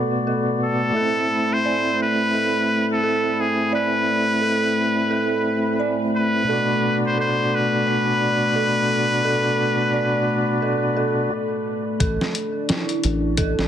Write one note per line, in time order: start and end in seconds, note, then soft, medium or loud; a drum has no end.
0.00 0.91 B2 medium
0.00 0.96 A3 medium
0.00 0.93 B3 medium
0.00 0.94 F#4 medium
0.00 0.27 A4 medium
0.00 0.95 D5 medium
0.00 0.99 D5 medium
0.00 0.95 B5 medium
0.27 0.60 A4 medium
0.64 1.55 A4 medium
0.92 6.43 A3 medium
0.92 6.44 E4 medium
0.97 12.02 A3 medium
0.97 1.30 A4 medium
0.97 12.02 B5 medium
1.01 6.47 C4 medium
1.53 2.01 C5 loud
1.65 2.32 D5 medium
2.02 2.86 B4 loud
2.34 3.01 A4 medium
2.93 3.42 A4 medium
3.03 3.37 A4 medium
3.41 3.74 G#4 medium
3.73 5.86 B4 loud
3.73 4.39 D5 medium
4.41 5.08 A4 medium
5.11 5.44 A4 medium
5.80 6.46 D5 medium
6.17 7.00 B4 medium
6.44 11.29 B2 medium
6.44 11.31 D4 medium
6.49 11.32 F#4 medium
6.49 7.15 A4 medium
6.53 11.34 D5 medium
7.06 7.18 C5 medium
7.17 7.51 A4 medium
7.17 7.56 C5 medium
7.55 11.33 B4 loud
7.87 8.53 D5 medium
8.55 9.22 A4 medium
9.24 9.57 A4 medium
9.94 10.60 D5 medium
10.62 10.94 A4 medium
10.96 11.28 A4 medium
12.00 12.18 A1 loud
12.00 13.68 D4 medium
12.00 12.22 A4 medium
12.00 13.68 D5 medium
12.00 kick loud
12.00 closed hi-hat medium
12.21 snare medium
12.35 closed hi-hat medium
12.69 13.35 E4 medium
12.69 snare loud
12.69 closed hi-hat medium
12.89 closed hi-hat soft
13.04 13.55 A1 loud
13.04 closed hi-hat medium
13.37 13.68 A4 medium
13.37 kick loud
13.37 closed hi-hat medium
13.59 13.68 A1 loud
13.59 snare soft